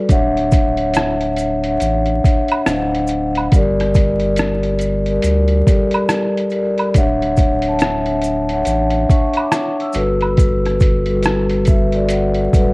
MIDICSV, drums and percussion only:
0, 0, Header, 1, 2, 480
1, 0, Start_track
1, 0, Key_signature, 2, "major"
1, 0, Tempo, 857143
1, 52, Time_signature, 4, 2, 24, 8
1, 7132, End_track
2, 0, Start_track
2, 0, Title_t, "Drums"
2, 51, Note_on_c, 9, 42, 85
2, 52, Note_on_c, 9, 36, 105
2, 58, Note_on_c, 9, 82, 58
2, 107, Note_off_c, 9, 42, 0
2, 108, Note_off_c, 9, 36, 0
2, 114, Note_off_c, 9, 82, 0
2, 208, Note_on_c, 9, 42, 46
2, 264, Note_off_c, 9, 42, 0
2, 289, Note_on_c, 9, 82, 43
2, 293, Note_on_c, 9, 36, 88
2, 300, Note_on_c, 9, 42, 61
2, 345, Note_off_c, 9, 82, 0
2, 349, Note_off_c, 9, 36, 0
2, 356, Note_off_c, 9, 42, 0
2, 433, Note_on_c, 9, 42, 47
2, 489, Note_off_c, 9, 42, 0
2, 525, Note_on_c, 9, 42, 70
2, 529, Note_on_c, 9, 82, 52
2, 542, Note_on_c, 9, 37, 112
2, 581, Note_off_c, 9, 42, 0
2, 585, Note_off_c, 9, 82, 0
2, 598, Note_off_c, 9, 37, 0
2, 676, Note_on_c, 9, 42, 51
2, 732, Note_off_c, 9, 42, 0
2, 764, Note_on_c, 9, 42, 63
2, 774, Note_on_c, 9, 82, 53
2, 820, Note_off_c, 9, 42, 0
2, 830, Note_off_c, 9, 82, 0
2, 916, Note_on_c, 9, 42, 47
2, 972, Note_off_c, 9, 42, 0
2, 1008, Note_on_c, 9, 42, 74
2, 1016, Note_on_c, 9, 82, 69
2, 1064, Note_off_c, 9, 42, 0
2, 1072, Note_off_c, 9, 82, 0
2, 1151, Note_on_c, 9, 42, 41
2, 1207, Note_off_c, 9, 42, 0
2, 1256, Note_on_c, 9, 36, 96
2, 1259, Note_on_c, 9, 82, 44
2, 1262, Note_on_c, 9, 42, 65
2, 1312, Note_off_c, 9, 36, 0
2, 1315, Note_off_c, 9, 82, 0
2, 1318, Note_off_c, 9, 42, 0
2, 1391, Note_on_c, 9, 42, 44
2, 1409, Note_on_c, 9, 76, 70
2, 1447, Note_off_c, 9, 42, 0
2, 1465, Note_off_c, 9, 76, 0
2, 1492, Note_on_c, 9, 37, 113
2, 1492, Note_on_c, 9, 42, 86
2, 1495, Note_on_c, 9, 82, 71
2, 1548, Note_off_c, 9, 37, 0
2, 1548, Note_off_c, 9, 42, 0
2, 1551, Note_off_c, 9, 82, 0
2, 1650, Note_on_c, 9, 42, 42
2, 1706, Note_off_c, 9, 42, 0
2, 1721, Note_on_c, 9, 82, 45
2, 1730, Note_on_c, 9, 42, 67
2, 1777, Note_off_c, 9, 82, 0
2, 1786, Note_off_c, 9, 42, 0
2, 1877, Note_on_c, 9, 42, 40
2, 1889, Note_on_c, 9, 76, 55
2, 1933, Note_off_c, 9, 42, 0
2, 1945, Note_off_c, 9, 76, 0
2, 1970, Note_on_c, 9, 42, 84
2, 1971, Note_on_c, 9, 36, 115
2, 1980, Note_on_c, 9, 82, 64
2, 2026, Note_off_c, 9, 42, 0
2, 2027, Note_off_c, 9, 36, 0
2, 2036, Note_off_c, 9, 82, 0
2, 2127, Note_on_c, 9, 42, 42
2, 2132, Note_on_c, 9, 37, 32
2, 2183, Note_off_c, 9, 42, 0
2, 2188, Note_off_c, 9, 37, 0
2, 2209, Note_on_c, 9, 82, 42
2, 2211, Note_on_c, 9, 36, 91
2, 2218, Note_on_c, 9, 42, 65
2, 2265, Note_off_c, 9, 82, 0
2, 2267, Note_off_c, 9, 36, 0
2, 2274, Note_off_c, 9, 42, 0
2, 2350, Note_on_c, 9, 42, 46
2, 2406, Note_off_c, 9, 42, 0
2, 2443, Note_on_c, 9, 42, 78
2, 2448, Note_on_c, 9, 82, 50
2, 2460, Note_on_c, 9, 37, 96
2, 2499, Note_off_c, 9, 42, 0
2, 2504, Note_off_c, 9, 82, 0
2, 2516, Note_off_c, 9, 37, 0
2, 2594, Note_on_c, 9, 42, 49
2, 2650, Note_off_c, 9, 42, 0
2, 2681, Note_on_c, 9, 42, 65
2, 2694, Note_on_c, 9, 82, 50
2, 2737, Note_off_c, 9, 42, 0
2, 2750, Note_off_c, 9, 82, 0
2, 2834, Note_on_c, 9, 42, 50
2, 2890, Note_off_c, 9, 42, 0
2, 2925, Note_on_c, 9, 42, 81
2, 2934, Note_on_c, 9, 82, 66
2, 2981, Note_off_c, 9, 42, 0
2, 2990, Note_off_c, 9, 82, 0
2, 3068, Note_on_c, 9, 42, 42
2, 3124, Note_off_c, 9, 42, 0
2, 3174, Note_on_c, 9, 36, 101
2, 3177, Note_on_c, 9, 82, 44
2, 3180, Note_on_c, 9, 42, 63
2, 3230, Note_off_c, 9, 36, 0
2, 3233, Note_off_c, 9, 82, 0
2, 3236, Note_off_c, 9, 42, 0
2, 3310, Note_on_c, 9, 42, 55
2, 3328, Note_on_c, 9, 76, 65
2, 3366, Note_off_c, 9, 42, 0
2, 3384, Note_off_c, 9, 76, 0
2, 3410, Note_on_c, 9, 37, 105
2, 3411, Note_on_c, 9, 42, 94
2, 3411, Note_on_c, 9, 82, 70
2, 3466, Note_off_c, 9, 37, 0
2, 3467, Note_off_c, 9, 42, 0
2, 3467, Note_off_c, 9, 82, 0
2, 3570, Note_on_c, 9, 42, 42
2, 3626, Note_off_c, 9, 42, 0
2, 3640, Note_on_c, 9, 82, 46
2, 3649, Note_on_c, 9, 42, 62
2, 3696, Note_off_c, 9, 82, 0
2, 3705, Note_off_c, 9, 42, 0
2, 3795, Note_on_c, 9, 42, 43
2, 3803, Note_on_c, 9, 76, 55
2, 3851, Note_off_c, 9, 42, 0
2, 3859, Note_off_c, 9, 76, 0
2, 3888, Note_on_c, 9, 42, 82
2, 3891, Note_on_c, 9, 36, 107
2, 3895, Note_on_c, 9, 82, 57
2, 3944, Note_off_c, 9, 42, 0
2, 3947, Note_off_c, 9, 36, 0
2, 3951, Note_off_c, 9, 82, 0
2, 4045, Note_on_c, 9, 42, 44
2, 4101, Note_off_c, 9, 42, 0
2, 4126, Note_on_c, 9, 82, 44
2, 4131, Note_on_c, 9, 36, 75
2, 4137, Note_on_c, 9, 42, 66
2, 4182, Note_off_c, 9, 82, 0
2, 4187, Note_off_c, 9, 36, 0
2, 4193, Note_off_c, 9, 42, 0
2, 4267, Note_on_c, 9, 42, 50
2, 4323, Note_off_c, 9, 42, 0
2, 4362, Note_on_c, 9, 42, 74
2, 4369, Note_on_c, 9, 82, 53
2, 4379, Note_on_c, 9, 37, 116
2, 4418, Note_off_c, 9, 42, 0
2, 4425, Note_off_c, 9, 82, 0
2, 4435, Note_off_c, 9, 37, 0
2, 4513, Note_on_c, 9, 42, 44
2, 4569, Note_off_c, 9, 42, 0
2, 4601, Note_on_c, 9, 42, 62
2, 4614, Note_on_c, 9, 82, 51
2, 4657, Note_off_c, 9, 42, 0
2, 4670, Note_off_c, 9, 82, 0
2, 4755, Note_on_c, 9, 42, 45
2, 4811, Note_off_c, 9, 42, 0
2, 4845, Note_on_c, 9, 42, 83
2, 4853, Note_on_c, 9, 82, 63
2, 4901, Note_off_c, 9, 42, 0
2, 4909, Note_off_c, 9, 82, 0
2, 4987, Note_on_c, 9, 42, 42
2, 5043, Note_off_c, 9, 42, 0
2, 5094, Note_on_c, 9, 36, 103
2, 5097, Note_on_c, 9, 82, 43
2, 5100, Note_on_c, 9, 42, 60
2, 5150, Note_off_c, 9, 36, 0
2, 5153, Note_off_c, 9, 82, 0
2, 5156, Note_off_c, 9, 42, 0
2, 5228, Note_on_c, 9, 42, 54
2, 5248, Note_on_c, 9, 76, 65
2, 5284, Note_off_c, 9, 42, 0
2, 5304, Note_off_c, 9, 76, 0
2, 5330, Note_on_c, 9, 37, 112
2, 5331, Note_on_c, 9, 42, 83
2, 5331, Note_on_c, 9, 82, 69
2, 5386, Note_off_c, 9, 37, 0
2, 5387, Note_off_c, 9, 42, 0
2, 5387, Note_off_c, 9, 82, 0
2, 5489, Note_on_c, 9, 42, 43
2, 5545, Note_off_c, 9, 42, 0
2, 5560, Note_on_c, 9, 82, 46
2, 5570, Note_on_c, 9, 42, 68
2, 5616, Note_off_c, 9, 82, 0
2, 5626, Note_off_c, 9, 42, 0
2, 5716, Note_on_c, 9, 42, 39
2, 5725, Note_on_c, 9, 76, 57
2, 5772, Note_off_c, 9, 42, 0
2, 5781, Note_off_c, 9, 76, 0
2, 5808, Note_on_c, 9, 42, 86
2, 5811, Note_on_c, 9, 36, 106
2, 5820, Note_on_c, 9, 82, 64
2, 5864, Note_off_c, 9, 42, 0
2, 5867, Note_off_c, 9, 36, 0
2, 5876, Note_off_c, 9, 82, 0
2, 5967, Note_on_c, 9, 42, 46
2, 5972, Note_on_c, 9, 37, 30
2, 6023, Note_off_c, 9, 42, 0
2, 6028, Note_off_c, 9, 37, 0
2, 6049, Note_on_c, 9, 82, 41
2, 6052, Note_on_c, 9, 36, 83
2, 6059, Note_on_c, 9, 42, 64
2, 6105, Note_off_c, 9, 82, 0
2, 6108, Note_off_c, 9, 36, 0
2, 6115, Note_off_c, 9, 42, 0
2, 6192, Note_on_c, 9, 42, 45
2, 6248, Note_off_c, 9, 42, 0
2, 6285, Note_on_c, 9, 42, 69
2, 6291, Note_on_c, 9, 82, 51
2, 6302, Note_on_c, 9, 37, 105
2, 6341, Note_off_c, 9, 42, 0
2, 6347, Note_off_c, 9, 82, 0
2, 6358, Note_off_c, 9, 37, 0
2, 6436, Note_on_c, 9, 42, 44
2, 6492, Note_off_c, 9, 42, 0
2, 6524, Note_on_c, 9, 42, 66
2, 6534, Note_on_c, 9, 82, 52
2, 6538, Note_on_c, 9, 36, 96
2, 6580, Note_off_c, 9, 42, 0
2, 6590, Note_off_c, 9, 82, 0
2, 6594, Note_off_c, 9, 36, 0
2, 6677, Note_on_c, 9, 42, 48
2, 6733, Note_off_c, 9, 42, 0
2, 6768, Note_on_c, 9, 42, 84
2, 6776, Note_on_c, 9, 82, 66
2, 6824, Note_off_c, 9, 42, 0
2, 6832, Note_off_c, 9, 82, 0
2, 6913, Note_on_c, 9, 42, 44
2, 6969, Note_off_c, 9, 42, 0
2, 7017, Note_on_c, 9, 36, 94
2, 7020, Note_on_c, 9, 82, 46
2, 7025, Note_on_c, 9, 42, 63
2, 7073, Note_off_c, 9, 36, 0
2, 7076, Note_off_c, 9, 82, 0
2, 7081, Note_off_c, 9, 42, 0
2, 7132, End_track
0, 0, End_of_file